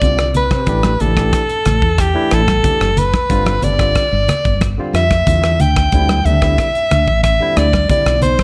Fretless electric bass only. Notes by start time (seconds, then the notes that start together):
0.01 C2
0.51 C3
0.67 A1
1.00 A1
1.66 A1
1.82 E2
2.32 A1
2.80 F#1
3.30 G1
3.63 G1
4.12 G1
4.45 G1
4.93 F2
5.27 E2
5.60 D2
5.92 D2
6.25 D2
6.91 D2
7.08 A1
7.56 D2
7.90 muted fretless electric bass stroke
8.05 B1